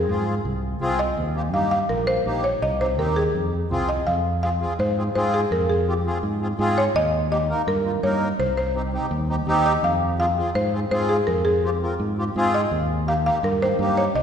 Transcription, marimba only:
0.00 0.59 G#4 medium
0.99 1.55 D#5 medium
1.54 1.62 F5 medium
1.71 1.80 F5 medium
1.89 1.98 A#4 medium
2.07 2.41 C5 medium
2.44 2.63 C#5 medium
2.62 2.79 D#5 medium
2.81 2.99 C5 medium
2.99 3.17 A#4 medium
3.16 3.85 G#4 medium
3.89 3.97 D#5 medium
4.07 4.42 F5 medium
4.43 4.76 F5 medium
4.80 5.14 C5 medium
5.15 5.32 C5 medium
5.34 5.50 G#4 medium
5.52 5.60 A#4 medium
5.69 6.37 G#4 medium
6.78 6.86 C#5 medium
6.96 7.31 D#5 loud
7.32 7.65 D#5 medium
7.68 8.05 A#4 medium
8.03 8.40 C#5 medium
8.40 8.48 C5 medium
8.57 9.25 C5 medium
9.66 9.74 D#5 medium
9.84 10.19 F5 medium
10.20 10.53 F5 medium
10.55 10.89 C5 medium
10.91 11.10 C5 medium
11.09 11.17 G#4 medium
11.27 11.35 A#4 medium
11.45 12.13 G#4 medium
12.54 13.10 D#5 medium
13.08 13.16 F5 medium
13.26 13.43 F5 medium
13.44 13.62 A#4 medium
13.62 13.95 C5 loud
13.97 14.14 C#5 medium
14.16 14.23 D#5 medium

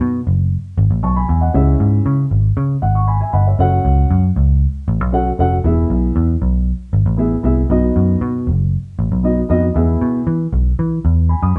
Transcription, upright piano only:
0.00 0.22 B2 medium
1.03 1.15 A5 medium
1.03 1.15 C#6 medium
1.16 1.27 G#5 medium
1.16 1.28 B5 medium
1.28 1.41 G#5 medium
1.41 1.66 D#5 medium
1.41 1.66 F#5 medium
1.54 2.27 C#3 medium
1.54 2.14 C#4 medium
1.54 2.14 E4 medium
1.54 2.14 G#4 medium
1.54 2.15 E5 medium
2.82 3.06 F#5 medium
2.95 3.07 C#6 medium
3.08 3.19 G#5 medium
3.08 3.20 B5 medium
3.21 3.33 E5 medium
3.21 3.33 G#5 medium
3.33 3.46 D#5 soft
3.33 3.45 F#5 medium
3.33 3.57 B5 medium
3.47 3.71 C#5 soft
3.47 3.71 E5 medium
3.59 4.19 C#4 medium
3.59 4.19 F#4 medium
3.59 4.19 A4 medium
3.59 4.20 F#5 medium
5.12 5.28 C#4 medium
5.12 5.28 F#4 medium
5.12 5.28 A4 medium
5.12 5.28 F#5 medium
5.38 5.54 C#4 medium
5.38 5.54 F#4 medium
5.38 5.54 A4 medium
5.38 5.54 F#5 medium
5.64 6.38 E3 medium
5.64 6.24 B3 medium
5.64 6.24 E4 medium
5.64 6.25 G#4 medium
5.64 6.25 E5 medium
7.17 7.33 B3 medium
7.17 7.33 E4 medium
7.17 7.34 G#4 medium
7.17 7.34 E5 medium
7.43 7.59 B3 medium
7.43 7.59 E4 medium
7.43 7.59 G#4 medium
7.43 7.60 E5 medium
7.70 8.43 B2 medium
7.70 8.30 B3 medium
7.70 8.30 D#4 medium
7.70 8.30 F#4 medium
7.70 8.31 D#5 medium
9.23 9.39 B3 medium
9.23 9.39 D#4 medium
9.23 9.39 F#4 medium
9.23 9.39 D#5 medium
9.49 9.64 B3 medium
9.49 9.65 D#4 medium
9.49 9.65 F#4 medium
9.49 9.65 D#5 medium
9.74 10.48 E3 medium
9.74 10.35 B3 medium
9.74 10.35 E4 medium
9.74 10.35 G#4 medium
9.74 10.36 E5 medium
11.29 11.42 G#5 medium
11.29 11.41 B5 medium
11.43 11.55 B5 medium
11.43 11.55 D#6 medium
11.56 11.59 C#6 medium

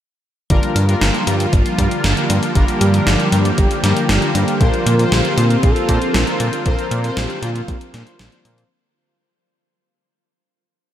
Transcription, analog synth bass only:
0.50 0.60 G1 loud
0.76 0.95 G2 medium
1.01 1.11 G1 medium
1.27 1.46 G2 loud
1.53 1.62 G1 medium
1.78 1.88 G2 medium
2.04 2.14 G1 loud
2.30 2.39 G2 medium
2.55 2.65 G1 loud
2.81 3.00 G2 medium
3.07 3.16 G1 medium
3.32 3.52 G2 loud
3.58 3.68 G1 medium
3.83 3.93 G2 loud
4.09 4.19 G1 loud
4.35 4.44 G2 medium
4.61 4.70 A#1 loud
4.86 5.05 A#2 medium
5.12 5.21 A#1 loud
5.38 5.57 A#2 loud
5.63 5.73 A#1 medium
5.89 5.98 A#2 loud
6.14 6.24 A#1 medium
6.40 6.50 A#2 medium
6.66 6.75 A#1 loud
6.91 7.10 A#2 loud
7.17 7.26 A#1 loud
7.42 7.62 A#2 loud
7.68 7.78 A#1 medium
7.94 8.03 A#2 loud
8.20 8.29 A#1 medium
8.45 8.64 A#2 loud

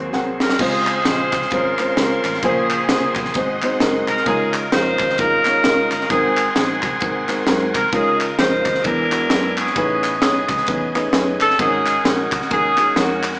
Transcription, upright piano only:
0.13 0.49 C4 medium
0.13 0.49 G#4 medium
0.13 0.49 A#4 medium
0.13 0.49 F#5 loud
0.60 1.04 C#3 medium
0.60 0.95 G#3 loud
0.60 0.95 C4 medium
0.60 0.95 F4 medium
0.60 0.95 C5 loud
1.05 1.41 C#3 medium
1.05 1.41 G#3 medium
1.05 1.41 C4 medium
1.05 1.41 F4 medium
1.51 1.71 G#3 medium
1.51 1.71 C4 medium
1.51 1.71 C#4 medium
1.51 1.71 F4 medium
1.51 1.71 C5 medium
1.79 1.92 G#3 medium
1.79 1.92 C4 medium
1.79 1.92 C#4 medium
1.79 1.92 F4 medium
1.79 1.93 C5 medium
1.97 2.33 G#3 medium
1.97 2.33 C4 medium
1.97 2.33 C#4 medium
1.97 2.33 F4 medium
1.97 2.33 A#4 medium
2.43 3.13 A#2 medium
2.43 2.79 C#3 medium
2.43 2.78 A#3 medium
2.43 2.79 F4 medium
2.43 2.79 G#4 medium
2.43 2.79 C5 loud
2.89 3.24 C#3 medium
2.89 3.24 A#3 medium
2.89 3.24 F4 medium
2.89 3.25 G#4 medium
2.89 3.24 C5 medium
3.35 4.04 G#2 medium
3.35 3.54 G#3 medium
3.35 3.55 C4 medium
3.35 3.54 D#4 medium
3.35 3.55 F#4 medium
3.35 3.55 C5 medium
3.63 3.76 G#3 medium
3.63 3.76 C4 medium
3.63 3.76 D#4 medium
3.63 3.76 F#4 medium
3.63 3.76 C5 loud
3.81 4.16 G#3 loud
3.81 4.16 C4 medium
3.81 4.16 D#4 medium
3.81 4.16 F#4 medium
3.81 4.16 A#4 loud
4.26 4.96 C#3 medium
4.26 4.62 G#3 loud
4.26 4.62 C#4 medium
4.26 4.62 D#4 medium
4.26 4.62 F4 medium
4.26 4.62 A#4 loud
4.72 5.07 G#3 medium
4.72 5.07 C#4 medium
4.72 5.07 D#4 medium
4.72 5.08 F4 medium
4.72 5.08 A#4 medium
5.18 5.38 G#3 medium
5.18 5.38 C#4 medium
5.18 5.38 D#4 medium
5.18 5.38 F4 medium
5.18 5.38 A#4 medium
5.45 5.59 G#3 medium
5.45 5.59 C#4 medium
5.45 5.59 D#4 medium
5.45 5.59 F4 medium
5.45 5.59 C#5 medium
5.64 5.99 G#3 medium
5.64 6.00 C#4 medium
5.64 6.00 D#4 medium
5.64 6.00 F4 medium
5.64 6.00 A#4 loud
6.10 6.79 G#2 medium
6.10 6.45 G#3 loud
6.10 6.45 C4 medium
6.10 6.45 D#4 medium
6.10 6.45 F#4 medium
6.10 6.45 A#4 loud
6.56 6.91 G#3 medium
6.56 6.91 C4 medium
6.56 6.91 D#4 medium
6.56 6.91 F#4 medium
6.56 6.91 G#4 medium
7.01 7.21 G#3 medium
7.01 7.21 C4 medium
7.01 7.21 D#4 medium
7.01 7.21 F#4 medium
7.01 7.21 A#4 medium
7.28 7.42 G#3 medium
7.28 7.42 C4 medium
7.28 7.42 D#4 medium
7.28 7.42 F#4 medium
7.28 7.42 A#4 loud
7.47 7.82 G#3 loud
7.47 7.82 C4 medium
7.47 7.82 D#4 loud
7.47 7.82 F#4 medium
7.47 7.83 A#4 loud
7.92 8.62 C#3 medium
7.92 8.28 G#3 medium
7.92 8.28 C#4 medium
7.92 8.28 D#4 medium
7.92 8.28 F4 medium
7.92 8.28 A#4 loud
8.38 8.74 G#3 medium
8.38 8.74 C#4 medium
8.38 8.74 D#4 medium
8.38 8.74 F4 medium
8.38 8.74 A#4 medium
8.84 9.53 E3 medium
8.84 9.04 G#3 medium
8.84 9.04 B3 medium
8.84 9.04 D4 medium
8.84 9.04 E4 medium
8.84 9.04 B4 medium
9.11 9.25 G#3 medium
9.11 9.25 B3 medium
9.11 9.25 D4 medium
9.11 9.25 E4 medium
9.11 9.25 F#4 medium
9.30 9.65 G#3 medium
9.30 9.65 B3 medium
9.30 9.66 D4 medium
9.30 9.66 E4 medium
9.30 9.66 B4 medium
9.77 10.45 A2 medium
9.77 10.11 A3 loud
9.77 10.12 C#4 medium
9.77 10.12 D#4 medium
9.77 10.11 G#4 medium
9.77 10.12 B4 loud
10.22 10.57 A3 medium
10.22 10.57 C#4 medium
10.22 10.57 D#4 medium
10.22 10.57 G#4 medium
10.22 10.57 C#5 medium
10.67 10.87 A3 medium
10.67 10.87 C#4 medium
10.67 10.87 D#4 medium
10.67 10.87 G#4 medium
10.67 10.87 B4 medium
10.95 11.08 A3 medium
10.95 11.08 C#4 medium
10.95 11.08 D#4 medium
10.95 11.08 G#4 medium
10.95 11.08 B4 medium
11.13 11.48 A3 loud
11.13 11.48 C#4 medium
11.13 11.48 D#4 medium
11.13 11.48 G#4 medium
11.13 11.48 B4 loud
11.58 12.28 G#2 medium
11.58 11.94 G#3 loud
11.58 11.65 C4 medium
11.58 11.94 D#4 medium
11.58 11.94 F#4 loud
11.58 11.94 A#4 loud
11.64 11.97 C#4 loud
12.04 12.40 G#3 medium
12.04 12.11 C4 medium
12.04 12.40 D#4 medium
12.04 12.40 F#4 medium
12.04 12.40 A#4 medium
12.10 12.42 C#4 medium
12.50 12.70 G#3 medium
12.50 12.70 C#4 medium
12.50 12.70 D#4 medium
12.50 12.70 F#4 medium
12.50 12.70 A#4 medium
12.77 12.90 G#3 medium
12.77 12.91 C#4 medium
12.77 12.91 D#4 medium
12.77 12.91 F#4 medium
12.77 12.91 G#4 medium
12.96 13.31 G#3 medium
12.96 13.31 C#4 medium
12.96 13.31 D#4 medium
12.96 13.31 F#4 medium
12.96 13.32 A#4 medium

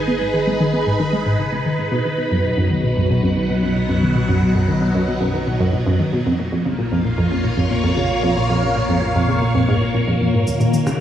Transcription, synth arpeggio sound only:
0.08 0.20 B3 medium
0.21 0.29 G#2 medium
0.34 0.42 D#3 medium
0.47 0.55 G#3 medium
0.60 0.72 D#3 loud
0.74 0.85 B3 medium
0.87 0.95 G#2 medium
1.00 1.08 D#3 loud
1.13 1.21 G#3 medium
1.26 1.34 G#2 loud
1.39 1.47 C#3 medium
1.53 1.60 C#3 medium
1.66 1.74 D#3 medium
1.79 1.91 G#2 medium
1.92 1.97 B2 medium
2.05 2.17 D#3 medium
2.18 2.26 B2 medium
2.31 2.39 F#2 loud
2.45 2.52 B2 medium
2.58 2.70 F#2 loud
2.71 2.83 D#3 medium
2.84 2.92 B2 medium
2.97 3.05 F#2 loud
3.10 3.18 B2 medium
3.23 3.35 F#2 loud
3.36 3.48 D#3 medium
3.50 3.58 B2 medium
3.63 3.71 F#2 loud
3.76 3.84 B2 medium
3.89 4.01 F#2 medium
4.02 4.14 D#3 medium
4.16 4.24 B2 medium
4.29 4.37 F#2 loud
4.42 4.50 B2 medium
4.55 4.67 F#2 loud
4.68 4.80 D#3 medium
4.81 4.89 B2 medium
4.95 5.03 F#2 loud
5.08 5.16 B2 medium
5.21 5.33 F#2 loud
5.34 5.46 D#3 medium
5.47 5.55 B2 medium
5.60 5.68 F#2 medium
5.73 5.81 B2 medium
5.87 5.98 F#2 loud
6.00 6.12 D#3 medium
6.13 6.21 B2 medium
6.26 6.34 F2 medium
6.39 6.47 A#2 medium
6.52 6.64 F2 medium
6.65 6.77 C#3 medium
6.79 6.87 A#2 medium
6.92 7.00 F2 loud
7.05 7.13 A#2 medium
7.18 7.30 F2 loud
7.31 7.43 C#3 medium
7.44 7.52 A#2 medium
7.58 7.66 F2 loud
7.70 7.79 A#2 medium
7.84 7.96 F2 medium
7.97 8.09 C#3 medium
8.10 8.18 A#2 medium
8.23 8.31 F2 loud
8.36 8.44 A#2 medium
8.50 8.62 F2 loud
8.63 8.75 C#3 medium
8.76 8.84 A#2 medium
8.89 8.97 F2 loud
9.02 9.10 A#2 medium
9.15 9.27 F2 loud
9.29 9.41 C#3 medium
9.42 9.50 A#2 medium
9.55 9.63 F2 loud
9.68 9.73 G#2 loud
9.81 9.93 A#2 medium
9.95 10.02 A#2 medium
10.08 10.16 F2 medium
10.21 10.33 F2 medium
10.34 10.39 G#2 medium
10.47 10.55 D#2 medium
10.61 10.68 A#2 medium
10.74 10.81 D#3 medium
10.87 10.99 C#3 medium

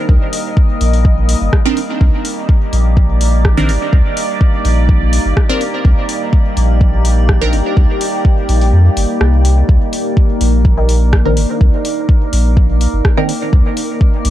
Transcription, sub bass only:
0.09 0.17 C2 loud
0.81 1.35 A#1 loud
1.41 1.49 G1 medium
2.01 2.09 C2 loud
2.73 3.70 A#1 loud
3.69 3.77 G1 loud
3.93 4.01 C2 loud
4.65 5.19 A#1 loud
5.25 5.33 G1 medium
5.85 5.93 C2 loud
6.57 7.54 A#1 loud
7.53 7.61 G1 loud
7.77 7.85 C2 loud
8.49 8.72 A#1 loud
8.73 8.89 F2 medium
8.97 9.05 G1 medium
9.21 9.63 C2 loud
9.69 9.77 C2 loud
10.41 11.38 A#1 loud
11.37 11.45 G1 loud
11.61 11.69 C2 loud
12.33 12.87 A#1 medium
12.93 13.01 G1 medium
13.53 13.61 C2 loud
14.25 14.30 A#1 loud

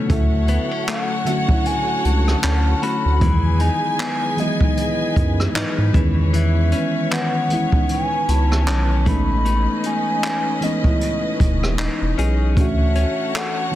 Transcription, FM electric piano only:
0.00 0.12 C#3 medium
0.00 0.09 F#3 medium
0.00 0.10 A3 medium
0.00 0.11 B3 medium
0.00 0.12 E4 medium
0.00 0.12 F#4 medium
0.08 1.03 D3 medium
0.08 1.04 F#3 medium
0.08 1.05 A3 medium
0.08 1.05 C#4 medium
0.13 1.06 E4 medium
1.25 1.44 D3 medium
1.25 1.44 F#3 medium
1.25 1.45 A3 medium
1.25 1.45 C#4 medium
1.29 1.46 F#4 medium
1.47 2.71 F#3 medium
1.47 2.71 A3 medium
1.47 2.72 C#4 medium
1.47 2.70 D4 medium
1.52 2.73 E4 medium
3.20 4.15 E3 medium
3.20 4.16 F#3 medium
3.20 4.16 G#3 medium
3.20 4.17 B3 medium
3.24 4.17 D#3 medium
4.37 4.55 E3 medium
4.37 4.56 F#3 medium
4.37 4.57 G#3 medium
4.37 4.57 B3 medium
4.42 4.58 E4 medium
4.59 5.82 E3 medium
4.59 5.83 F#3 medium
4.59 5.83 G#3 medium
4.59 5.84 B3 medium
4.64 5.84 D#4 medium
5.93 7.20 E3 loud
5.93 7.20 G#3 medium
5.93 7.21 B3 medium
5.93 7.21 C#4 medium
5.98 7.22 D#3 loud
7.49 7.67 E3 medium
7.49 7.68 G#3 medium
7.49 7.68 B3 medium
7.49 7.69 C#4 medium
7.53 7.70 E4 medium
7.71 8.94 E3 medium
7.71 8.95 G#3 medium
7.71 8.95 B3 medium
7.71 8.96 C#4 medium
7.76 8.96 D#4 medium
9.05 10.31 E3 medium
9.05 10.32 G#3 medium
9.05 10.33 B3 medium
9.05 10.33 C#4 medium
9.10 10.34 D#4 medium
10.61 10.79 E3 medium
10.61 10.80 G#3 medium
10.61 10.80 B3 medium
10.61 10.81 C#4 medium
10.65 10.82 D#4 medium
10.83 12.06 E3 medium
10.83 12.06 G#3 medium
10.83 12.07 B3 medium
10.83 12.07 C#4 medium
10.88 12.08 E4 medium
12.55 13.50 E3 medium
12.55 13.51 A3 medium
12.55 13.52 C#4 medium
12.55 13.52 D4 medium
12.60 13.53 F#4 medium
13.71 13.75 E3 medium

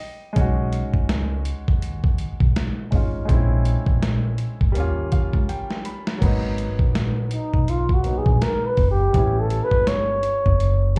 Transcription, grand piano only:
0.00 0.30 B3 medium
0.00 0.31 C#4 medium
0.00 0.33 E4 medium
0.00 0.34 G4 medium
0.00 0.33 D#5 medium
0.33 2.87 G#3 medium
0.33 2.88 C#4 medium
0.38 2.89 D#4 medium
0.38 2.90 F#4 medium
2.91 3.24 G#3 medium
2.91 3.29 C#4 medium
2.91 3.29 D#4 soft
2.95 3.30 F4 medium
3.25 4.70 G#3 medium
3.25 4.72 C4 medium
3.30 4.73 C#4 medium
3.30 4.74 E4 medium
4.72 6.17 G3 medium
4.72 6.18 A#3 medium
4.77 6.19 C#4 medium
4.77 6.21 F4 medium
5.12 5.46 F5 medium
5.49 5.83 G5 medium
5.85 6.19 B5 medium
6.18 7.99 F#3 medium
6.18 8.00 A#3 medium
6.23 8.02 B3 medium
6.23 8.03 D#4 medium
8.03 9.13 F#3 soft
8.03 9.14 A#3 soft
8.03 9.11 B3 soft
8.03 9.15 D#4 soft
9.10 10.91 G3 medium
9.10 10.93 B3 medium
9.15 10.94 C#4 medium
9.15 10.95 E4 medium
10.96 10.99 G3 medium

